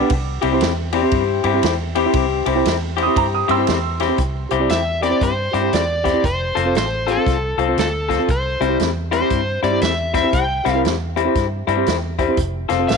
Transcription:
Already playing: clean electric guitar G3 B3 D4 G4, upright piano D6
0.01 reed electric piano B3 D4 G4 B4
0.10 fingered electric bass C2, kick, ride
0.41 fingered electric bass C2, clean electric guitar C3 C4 E4 G4, reed electric piano G4 C5, ride
0.53 reed electric piano C4 E4 G4 C5
0.61 fingered electric bass E2, snare, ride
0.93 clean electric guitar C3 C4 E4 G4, saxophone section C4 E4 G4, reed electric piano G4 D5, ride
1.03 reed electric piano C4 E4 G4 C5
1.11 fingered electric bass G2, kick, ride
1.44 fingered electric bass G2, clean electric guitar C3 C4 E4 G4, reed electric piano G4 C5, ride
1.54 reed electric piano C4 E4 G4 C5
1.63 fingered electric bass E2, snare, ride
1.94 clean electric guitar C3 C4 E4 G4, saxophone section C4 E4 G4, reed electric piano G4 C5, ride
2.06 reed electric piano C4 E4 G4 C5
2.13 fingered electric bass C2, kick, ride
2.46 fingered electric bass C2, clean electric guitar C3 C4 E4 G4, reed electric piano G4 C5, ride
2.56 reed electric piano C4 E4 G4 C5
2.65 fingered electric bass E2, snare, ride
2.96 clean electric guitar C3 C4 E4 G4, saxophone section C4 E4 G4, reed electric piano G4 C5, ride
3.03 reed electric piano C4, upright piano D#6
3.07 reed electric piano E4 G4 C5
3.14 fingered electric bass G2, saxophone section C4 E4 G4, upright piano A#5, kick, ride
3.34 upright piano D#6
3.48 fingered electric bass G2, clean electric guitar C3 C4 E4 G4, reed electric piano G4 C5, upright piano C6 E6, ride
3.57 reed electric piano C4 E4 G4 C5
3.67 fingered electric bass E2, snare, ride
4.00 clean electric guitar C3 C4 E4 G4, reed electric piano G4 C5, snare, ride
4.08 reed electric piano C4 E4 G4 C5
4.18 fingered electric bass C2, kick, closed hi-hat
4.49 fingered electric bass C2, clean electric guitar C3 C4 E4 G4, reed electric piano G4 C5, closed hi-hat
4.59 reed electric piano C4 E4 G4 D5
4.69 fingered electric bass E2, electric slide guitar E5, snare, closed hi-hat
5.01 clean electric guitar C3 C4 E4 G4, reed electric piano G4 A#4, electric slide guitar D5, closed hi-hat
5.10 reed electric piano C4 E4 G4 C5
5.21 fingered electric bass G2, electric slide guitar C5, kick, closed hi-hat
5.52 fingered electric bass G2, clean electric guitar C3 C4 E4 G4, reed electric piano G4 D5, closed hi-hat
5.62 reed electric piano C4 E4 G4 C5
5.73 fingered electric bass E2, electric slide guitar D5, snare, closed hi-hat
6.04 clean electric guitar C3 C4 E4 G4, reed electric piano G4 C5, kick, snare, closed hi-hat
6.13 reed electric piano C4 E4 G4 C5
6.24 fingered electric bass F1, electric slide guitar C5, kick, closed hi-hat
6.55 fingered electric bass F1, clean electric guitar F3 C4 F4 A4, reed electric piano A4 C5, closed hi-hat
6.65 reed electric piano C4 F4 A4 C5
6.75 fingered electric bass A1, electric slide guitar C5, snare, closed hi-hat
7.07 clean electric guitar F3 C4 F4 A4, reed electric piano A4 C5, closed hi-hat
7.11 electric slide guitar A4
7.17 reed electric piano C4 F4 A4 C5
7.27 fingered electric bass C2, kick, snare, closed hi-hat
7.58 fingered electric bass C2, clean electric guitar F3 C4 F4 A4, reed electric piano A4 C5, closed hi-hat
7.68 reed electric piano C4 F4 A4 C5
7.77 fingered electric bass D2, electric slide guitar A4, snare, closed hi-hat
8.09 clean electric guitar F3 C4 F4 A4, reed electric piano A4 C5, kick, snare, closed hi-hat
8.19 reed electric piano C4 F4 A4 C5
8.29 fingered electric bass C2, electric slide guitar C5, kick, closed hi-hat
8.60 fingered electric bass C2, clean electric guitar C3 G3 C4 E4, reed electric piano G4 C5, closed hi-hat
8.69 reed electric piano C4 E4 G4 C5
8.80 fingered electric bass E2, snare, closed hi-hat
9.11 clean electric guitar C3 G3 C4 E4, reed electric piano G4 C5, electric slide guitar C5, closed hi-hat
9.20 reed electric piano C4 E4 G4 C5
9.30 fingered electric bass G2, kick, closed hi-hat
9.63 fingered electric bass G2, clean electric guitar C3 G3 C4 E4, reed electric piano G4 C5, electric slide guitar D5, closed hi-hat
9.71 reed electric piano C4 E4 G4 C5
9.81 fingered electric bass E2, electric slide guitar E5, snare, closed hi-hat
10.13 clean electric guitar C3 G3 C4 E4, reed electric piano G4 C5, electric slide guitar E5, kick, snare, closed hi-hat
10.23 reed electric piano C4 E4 G4 C5
10.33 fingered electric bass C2, electric slide guitar G5, kick, closed hi-hat
10.64 fingered electric bass C2, clean electric guitar C3 G3 C4 E4, reed electric piano G4 C5, snare, closed hi-hat
10.75 reed electric piano C4 E4 G4 A#4
10.84 fingered electric bass E2, snare, closed hi-hat
11.16 clean electric guitar C3 G3 C4 E4, reed electric piano G4 C5, closed hi-hat
11.25 reed electric piano C4 E4 G4 C5
11.35 fingered electric bass G2, kick, snare, closed hi-hat
11.67 fingered electric bass G2, clean electric guitar C3 G3 C4 E4, reed electric piano G4 C5, closed hi-hat
11.77 reed electric piano C4 E4 G4 C5
11.86 fingered electric bass E2, snare, closed hi-hat
12.19 clean electric guitar C3 G3 C4 E4, reed electric piano G4 C5, kick, closed hi-hat
12.28 reed electric piano C4 E4 G4 C5
12.37 fingered electric bass F1, kick, closed hi-hat
12.69 fingered electric bass F1, clean electric guitar F3 C4 F4 A4, reed electric piano A4 C5, snare, closed hi-hat
12.79 reed electric piano C4 F4 A4 C5
12.88 fingered electric bass A1, electric slide guitar F5, snare, closed hi-hat

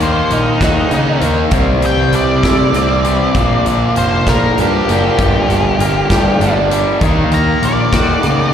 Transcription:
Already playing: distorted electric guitar D#3 A#3 D#4, clean electric guitar D#3
0.00 picked electric bass D#2, clean electric guitar A#3, lead electric guitar C5, closed hi-hat
0.30 picked electric bass A#1, clean electric guitar A#3, lead electric guitar D#4, closed hi-hat
0.61 picked electric bass D#2, lead electric guitar D#4, clean electric guitar F#4, kick, snare, closed hi-hat
0.91 picked electric bass C#3, distorted electric guitar D#3 A#3 D#4, clean electric guitar D#4, closed hi-hat
1.21 picked electric bass D#2, clean electric guitar D#3, overdriven electric guitar D#3 A#3 D#4, closed hi-hat
1.50 picked electric bass C2, distorted electric guitar C3 G3 C4, clean electric guitar C3, kick, closed hi-hat
1.82 picked electric bass C2, clean electric guitar E3, closed hi-hat
1.86 lead electric guitar G5
2.12 picked electric bass C2, clean electric guitar G3, lead electric guitar D5, closed hi-hat
2.43 picked electric bass C3, clean electric guitar E4, kick, snare, closed hi-hat
2.73 picked electric bass C2, distorted electric guitar C3 G3 C4, clean electric guitar C4, closed hi-hat
3.04 overdriven electric guitar C3 G3 C4, clean electric guitar E3, closed hi-hat
3.34 picked electric bass A#1, distorted electric guitar A#2 F3 A#3, clean electric guitar A#2, kick, closed hi-hat
3.66 picked electric bass A#1, clean electric guitar D3, closed hi-hat
3.96 picked electric bass F1, clean electric guitar A#3, lead electric guitar C5, closed hi-hat
4.26 picked electric bass A#1, clean electric guitar F4, lead electric guitar A#4, kick, snare, closed hi-hat
4.56 picked electric bass G2, distorted electric guitar A#2 F3 A#3, clean electric guitar D4, closed hi-hat
4.61 lead electric guitar G4
4.87 picked electric bass F#1, overdriven electric guitar A#2 F3 A#3, clean electric guitar D3, closed hi-hat
4.92 lead electric guitar G4
5.17 picked electric bass G1, distorted electric guitar G2 D3 G3, clean electric guitar G2, kick, closed hi-hat
5.49 picked electric bass G1, clean electric guitar D3, closed hi-hat
5.79 picked electric bass G1, clean electric guitar A#3, closed hi-hat
6.10 picked electric bass G2, clean electric guitar G4, kick, snare, closed hi-hat
6.39 picked electric bass G1, distorted electric guitar G2 D3 G3, clean electric guitar D4, closed hi-hat
6.71 overdriven electric guitar G2 D3 G3, clean electric guitar G3, closed hi-hat
7.00 picked electric bass D#2, distorted electric guitar D#3 A#3 D#4, clean electric guitar D#3, kick, closed hi-hat
7.31 picked electric bass D#2, clean electric guitar A#3, lead electric guitar A#5, closed hi-hat
7.62 picked electric bass A#1, clean electric guitar A#3, lead electric guitar D5, closed hi-hat
7.92 picked electric bass D#2, clean electric guitar F#4, kick, snare, closed hi-hat
8.21 picked electric bass C#3, distorted electric guitar D#3 A#3 D#4, clean electric guitar D#4, closed hi-hat

